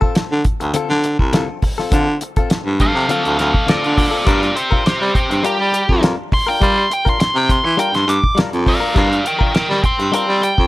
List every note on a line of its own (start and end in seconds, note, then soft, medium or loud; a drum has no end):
0.01 0.15 C4 medium
0.01 0.16 F4 medium
0.01 0.15 A4 medium
0.01 kick medium
0.15 muted clean electric guitar stroke soft
0.15 snare loud
0.15 closed hi-hat medium
0.32 0.43 D3 medium
0.45 kick medium
0.45 closed hi-hat medium
0.60 0.72 D2 medium
0.60 muted clean electric guitar stroke soft
0.60 closed hi-hat soft
0.74 0.90 D3 medium
0.74 0.90 C4 medium
0.74 0.90 F4 medium
0.74 0.89 A4 medium
0.74 closed hi-hat medium
0.90 1.14 D3 medium
0.90 muted clean electric guitar stroke medium
0.90 snare soft
1.04 muted clean electric guitar stroke soft
1.04 closed hi-hat medium
1.19 1.43 C2 medium
1.19 kick medium
1.33 1.48 D3 medium
1.33 1.49 C4 medium
1.33 1.48 F4 medium
1.33 1.48 A4 medium
1.33 snare loud
1.33 closed hi-hat medium
1.49 muted clean electric guitar stroke soft
1.62 muted clean electric guitar stroke soft
1.62 kick medium
1.62 open hi-hat medium
1.78 1.91 C4 soft
1.78 1.92 F4 medium
1.78 1.92 A4 medium
1.78 snare soft
1.92 2.07 D3 medium
1.92 2.16 D3 loud
1.92 2.08 C4 medium
1.92 2.08 F4 medium
1.92 2.07 A4 medium
1.92 kick loud
1.92 closed hi-hat medium
2.08 muted clean electric guitar stroke soft
2.21 muted clean electric guitar stroke soft
2.21 closed hi-hat medium
2.36 2.50 C4 medium
2.36 2.50 F4 medium
2.36 2.50 A4 medium
2.36 kick medium
2.36 closed hi-hat soft
2.50 muted clean electric guitar stroke soft
2.50 snare loud
2.50 closed hi-hat medium
2.66 2.90 G2 medium
2.80 3.09 A4 medium
2.80 3.09 F5 medium
2.80 kick medium
2.80 closed hi-hat medium
2.95 3.06 C3 medium
2.95 muted clean electric guitar stroke soft
3.09 3.25 D3 medium
3.09 3.25 C4 medium
3.09 3.24 F4 medium
3.09 3.37 A4 medium
3.09 3.23 A4 medium
3.09 3.39 F5 medium
3.09 closed hi-hat medium
3.24 3.37 D2 medium
3.24 muted clean electric guitar stroke soft
3.24 closed hi-hat soft
3.38 3.52 D2 medium
3.38 3.66 A4 medium
3.38 3.67 F5 medium
3.38 muted clean electric guitar stroke soft
3.38 snare soft
3.38 closed hi-hat medium
3.54 kick medium
3.67 3.76 D2 soft
3.67 3.83 D3 medium
3.67 3.83 C4 medium
3.67 3.95 F4 medium
3.67 3.82 F4 medium
3.67 3.81 A4 medium
3.67 3.96 D5 medium
3.67 snare loud
3.67 closed hi-hat medium
3.83 4.08 D3 medium
3.83 muted clean electric guitar stroke soft
3.83 closed hi-hat soft
3.97 4.24 F4 medium
3.97 4.26 D5 medium
3.97 muted clean electric guitar stroke soft
3.97 kick medium
3.97 open hi-hat medium
4.11 4.26 C4 soft
4.11 4.25 F4 soft
4.11 4.26 A4 medium
4.25 4.51 G2 medium
4.25 4.41 G3 medium
4.25 4.42 D4 medium
4.25 4.42 F4 medium
4.25 4.54 F4 medium
4.25 4.41 A#4 medium
4.25 4.55 D5 medium
4.25 kick loud
4.25 closed hi-hat medium
4.42 muted clean electric guitar stroke soft
4.42 closed hi-hat soft
4.55 4.83 G4 medium
4.55 4.84 C5 medium
4.55 muted clean electric guitar stroke soft
4.55 closed hi-hat medium
4.71 4.84 D4 soft
4.71 4.84 F4 soft
4.71 4.85 A#4 medium
4.71 kick medium
4.85 5.13 G4 medium
4.85 5.15 C5 medium
4.85 muted clean electric guitar stroke soft
4.85 snare loud
4.85 closed hi-hat medium
5.01 5.12 G3 medium
5.15 5.42 G4 medium
5.15 5.44 C5 medium
5.15 kick medium
5.15 closed hi-hat medium
5.30 5.42 G2 medium
5.30 muted clean electric guitar stroke soft
5.30 closed hi-hat soft
5.43 5.59 G3 medium
5.43 5.60 D4 medium
5.43 5.59 F4 medium
5.43 6.01 G4 loud
5.43 5.58 A#4 medium
5.43 closed hi-hat medium
5.59 5.84 G3 medium
5.59 muted clean electric guitar stroke soft
5.72 muted clean electric guitar stroke soft
5.72 closed hi-hat medium
5.89 6.13 F2 medium
5.89 kick medium
6.01 6.17 G3 medium
6.01 6.18 D4 medium
6.01 6.17 F4 medium
6.01 6.16 A#4 medium
6.01 snare loud
6.01 closed hi-hat medium
6.17 muted clean electric guitar stroke soft
6.32 6.48 C6 loud
6.32 muted clean electric guitar stroke soft
6.32 kick medium
6.32 open hi-hat medium
6.47 6.60 D4 soft
6.47 6.61 F4 soft
6.47 6.61 A#4 medium
6.47 6.61 G5 medium
6.60 6.76 G3 medium
6.60 6.86 G3 medium
6.60 6.77 D4 medium
6.60 6.76 F4 medium
6.60 6.75 A#4 medium
6.60 6.77 C6 medium
6.60 kick loud
6.60 closed hi-hat medium
6.77 6.91 C6 medium
6.77 muted clean electric guitar stroke soft
6.90 7.07 G5 medium
6.90 muted clean electric guitar stroke soft
6.90 closed hi-hat medium
7.05 7.18 D4 soft
7.05 7.18 F4 soft
7.05 7.19 A#4 medium
7.05 kick medium
7.05 closed hi-hat soft
7.09 7.19 C6 medium
7.18 7.35 C6 loud
7.18 muted clean electric guitar stroke soft
7.18 snare loud
7.18 closed hi-hat medium
7.35 7.60 C3 medium
7.35 7.50 G5 medium
7.49 7.63 C6 medium
7.49 kick medium
7.49 closed hi-hat medium
7.64 7.76 E3 medium
7.64 7.78 C6 loud
7.64 muted clean electric guitar stroke soft
7.77 7.93 G3 medium
7.77 7.93 D4 medium
7.77 7.92 F4 medium
7.77 7.92 A#4 medium
7.77 7.94 G5 loud
7.77 closed hi-hat medium
7.93 8.05 G2 medium
7.93 8.08 C6 medium
7.93 muted clean electric guitar stroke soft
7.93 snare soft
7.93 closed hi-hat soft
8.07 8.20 G2 medium
8.07 8.37 D6 loud
8.07 muted clean electric guitar stroke soft
8.07 closed hi-hat medium
8.24 kick medium
8.35 8.44 G2 soft
8.35 8.52 G3 medium
8.35 8.52 D4 medium
8.35 8.51 F4 medium
8.35 8.50 A#4 medium
8.35 snare loud
8.35 closed hi-hat medium
8.51 8.77 F2 medium
8.51 muted clean electric guitar stroke soft
8.51 closed hi-hat soft
8.65 8.96 D5 medium
8.65 muted clean electric guitar stroke soft
8.65 kick medium
8.65 open hi-hat medium
8.69 8.96 F5 loud
8.80 8.94 D4 soft
8.80 8.95 F4 soft
8.80 8.95 A#4 medium
8.94 9.20 G2 loud
8.94 9.11 G3 medium
8.94 9.11 D4 medium
8.94 9.10 F4 medium
8.94 9.09 A#4 medium
8.94 9.24 D5 medium
8.94 kick loud
8.94 closed hi-hat medium
8.99 9.26 F5 loud
9.10 muted clean electric guitar stroke soft
9.10 closed hi-hat soft
9.24 9.53 A#4 medium
9.24 9.54 G5 medium
9.24 muted clean electric guitar stroke soft
9.24 closed hi-hat medium
9.39 9.53 D4 soft
9.39 9.53 F4 medium
9.39 9.53 A#4 medium
9.39 kick medium
9.54 9.82 A#4 medium
9.54 9.83 G5 medium
9.54 muted clean electric guitar stroke soft
9.54 snare loud
9.54 closed hi-hat medium
9.70 9.81 G3 medium
9.70 snare soft
9.84 10.11 G5 medium
9.84 10.13 C6 medium
9.84 kick medium
9.84 closed hi-hat medium
9.99 10.11 G2 medium
9.99 muted clean electric guitar stroke soft
9.99 closed hi-hat soft
10.12 10.28 G3 medium
10.12 10.28 D4 medium
10.12 10.28 F4 medium
10.12 10.26 A#4 medium
10.12 10.41 G5 medium
10.12 10.43 C6 loud
10.12 closed hi-hat medium
10.27 10.53 G3 medium
10.27 muted clean electric guitar stroke soft
10.41 10.67 G5 medium
10.41 muted clean electric guitar stroke soft
10.41 closed hi-hat medium
10.58 10.67 F2 medium
10.58 kick medium